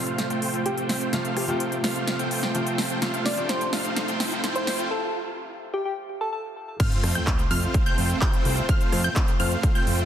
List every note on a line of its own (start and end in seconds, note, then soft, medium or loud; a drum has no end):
0.00 1.12 C3 medium
0.00 1.13 F3 medium
0.00 0.27 A3 medium
0.00 1.13 A3 medium
0.00 4.87 A3 medium
0.00 0.27 C4 medium
0.00 4.87 C4 medium
0.00 0.27 F4 medium
0.00 1.14 F4 medium
0.00 4.87 F4 medium
0.00 0.27 C5 medium
0.00 4.87 C5 medium
0.00 0.27 F5 medium
0.00 riser medium
0.07 closed hi-hat soft
0.18 snare soft
0.18 closed hi-hat medium
0.30 0.63 A3 loud
0.30 0.63 C4 medium
0.30 0.63 F4 medium
0.30 0.63 C5 medium
0.30 0.63 G5 loud
0.30 closed hi-hat soft
0.42 open hi-hat loud
0.54 closed hi-hat soft
0.66 1.10 A3 medium
0.66 1.10 C4 medium
0.66 1.10 F4 medium
0.66 0.87 G4 medium
0.66 1.10 C5 medium
0.66 1.10 G5 medium
0.66 closed hi-hat medium
0.78 closed hi-hat soft
0.89 snare medium
0.89 open hi-hat loud
1.01 closed hi-hat soft
1.12 1.25 C3 medium
1.12 1.26 F3 medium
1.12 1.46 A3 medium
1.12 1.26 A3 medium
1.12 1.46 C4 medium
1.12 1.46 F4 medium
1.12 1.26 F4 medium
1.12 1.46 C5 medium
1.12 1.46 F5 loud
1.12 snare medium
1.12 closed hi-hat medium
1.25 closed hi-hat soft
1.37 1.44 G4 medium
1.37 cross-stick medium
1.37 open hi-hat loud
1.47 2.51 C3 medium
1.47 2.52 F3 medium
1.47 1.75 A3 medium
1.47 2.52 A3 medium
1.47 1.75 C4 medium
1.47 1.75 F4 medium
1.47 2.52 F4 loud
1.47 1.56 G4 medium
1.47 1.75 C5 medium
1.47 1.75 G5 medium
1.47 closed hi-hat soft
1.60 closed hi-hat medium
1.72 closed hi-hat soft
1.84 2.16 A3 medium
1.84 2.16 C4 medium
1.84 2.16 F4 medium
1.84 2.16 C5 medium
1.84 2.16 F5 loud
1.84 snare medium
1.84 open hi-hat loud
1.96 closed hi-hat soft
2.08 snare medium
2.08 closed hi-hat medium
2.19 2.52 A3 loud
2.19 2.52 C4 medium
2.19 2.52 F4 medium
2.19 2.52 C5 medium
2.19 2.52 G5 loud
2.19 closed hi-hat soft
2.31 open hi-hat loud
2.43 snare medium
2.43 closed hi-hat soft
2.54 2.67 C3 medium
2.54 2.67 F3 medium
2.54 2.99 A3 medium
2.54 2.68 A3 medium
2.54 2.99 C4 medium
2.54 2.99 F4 medium
2.54 2.68 F4 medium
2.54 2.99 C5 medium
2.54 2.99 G5 medium
2.54 closed hi-hat medium
2.67 closed hi-hat soft
2.78 snare medium
2.78 open hi-hat loud
2.90 closed hi-hat soft
3.01 3.34 C3 medium
3.01 3.34 F3 medium
3.01 3.35 A3 medium
3.01 3.35 C4 medium
3.01 3.35 F4 medium
3.01 3.35 C5 medium
3.01 3.35 F5 medium
3.01 snare medium
3.01 closed hi-hat medium
3.14 closed hi-hat soft
3.26 3.47 D5 loud
3.26 snare medium
3.26 open hi-hat loud
3.36 4.88 C3 medium
3.36 4.88 F3 medium
3.36 3.64 A3 medium
3.36 4.88 A3 medium
3.36 3.64 C4 medium
3.36 3.64 F4 medium
3.36 4.89 F4 medium
3.36 3.64 C5 medium
3.36 3.64 G5 medium
3.36 closed hi-hat soft
3.49 3.70 C5 loud
3.49 snare medium
3.49 closed hi-hat medium
3.61 closed hi-hat soft
3.73 4.05 A3 medium
3.73 4.05 C4 medium
3.73 4.05 F4 medium
3.73 4.05 C5 medium
3.73 4.05 F5 loud
3.73 snare medium
3.73 open hi-hat loud
3.85 closed hi-hat soft
3.96 snare medium
3.96 closed hi-hat medium
4.08 4.41 A3 loud
4.08 4.41 C4 medium
4.08 4.41 F4 medium
4.08 4.41 C5 medium
4.08 4.41 G5 loud
4.08 closed hi-hat soft
4.20 snare medium
4.20 open hi-hat loud
4.32 closed hi-hat soft
4.44 4.88 A3 medium
4.44 4.88 C4 medium
4.44 4.88 F4 medium
4.44 4.88 C5 medium
4.44 4.88 G5 medium
4.44 snare medium
4.44 closed hi-hat medium
4.55 4.76 C5 medium
4.55 closed hi-hat soft
4.67 snare medium
4.67 open hi-hat loud
4.79 closed hi-hat soft
4.91 5.12 A4 medium
5.74 5.81 G4 medium
5.85 5.93 G4 medium
6.21 6.28 A4 medium
6.33 6.40 A4 medium
6.80 7.12 A3 medium
6.80 10.05 A3 medium
6.80 7.12 C4 medium
6.80 10.05 C4 medium
6.80 7.12 F4 medium
6.80 10.05 F4 medium
6.80 7.12 C5 medium
6.80 10.05 C5 medium
6.80 7.12 F5 medium
6.80 7.12 F6 loud
6.80 kick loud
6.80 closed hi-hat medium
6.80 crash loud
6.80 sub drop medium
6.92 closed hi-hat soft
7.03 7.20 F2 medium
7.03 cross-stick medium
7.03 open hi-hat loud
7.15 7.41 A3 medium
7.15 7.41 C4 medium
7.15 7.41 F4 medium
7.15 7.41 C5 medium
7.15 7.41 G5 medium
7.15 7.41 G6 medium
7.15 closed hi-hat soft
7.27 kick loud
7.27 clap loud
7.27 closed hi-hat medium
7.39 closed hi-hat soft
7.51 7.67 F2 loud
7.51 7.83 A3 medium
7.51 7.83 C4 medium
7.51 7.83 F4 medium
7.51 7.83 C5 medium
7.51 7.83 F5 loud
7.51 7.83 F6 loud
7.51 open hi-hat loud
7.63 closed hi-hat soft
7.74 kick loud
7.74 closed hi-hat medium
7.86 8.19 A3 loud
7.86 8.19 C4 medium
7.86 8.19 F4 medium
7.86 8.19 C5 medium
7.86 8.19 G5 loud
7.86 8.19 G6 loud
7.86 closed hi-hat soft
7.98 8.14 F2 medium
7.98 open hi-hat loud
8.10 closed hi-hat soft
8.22 8.66 A3 medium
8.22 8.66 C4 medium
8.22 8.66 F4 medium
8.22 8.66 C5 medium
8.22 8.66 G5 medium
8.22 8.66 G6 medium
8.22 kick loud
8.22 clap loud
8.22 closed hi-hat loud
8.33 closed hi-hat soft
8.45 8.62 C2 loud
8.45 open hi-hat loud
8.57 closed hi-hat soft
8.69 9.01 C4 medium
8.69 9.01 C5 medium
8.69 9.02 F6 medium
8.69 kick loud
8.69 closed hi-hat medium
8.81 closed hi-hat soft
8.92 9.09 F2 medium
8.92 cross-stick medium
8.92 open hi-hat loud
9.04 9.30 A3 medium
9.04 9.30 C4 medium
9.04 9.30 F4 medium
9.04 9.30 C5 medium
9.04 9.30 G5 loud
9.04 9.30 G6 medium
9.04 closed hi-hat soft
9.16 kick loud
9.16 clap loud
9.16 closed hi-hat loud
9.28 closed hi-hat soft
9.40 9.56 F2 loud
9.40 9.72 A3 medium
9.40 9.72 C4 medium
9.40 9.72 F4 medium
9.40 9.72 C5 medium
9.40 9.72 F5 loud
9.40 9.72 F6 loud
9.40 open hi-hat loud
9.52 closed hi-hat soft
9.63 kick loud
9.63 closed hi-hat medium
9.75 10.05 A3 loud
9.75 10.05 C4 medium
9.75 10.05 F4 medium
9.75 10.05 C5 medium
9.75 10.05 G5 loud
9.75 10.05 G6 loud
9.75 closed hi-hat soft
9.87 10.03 F2 medium
9.87 open hi-hat loud
9.99 closed hi-hat soft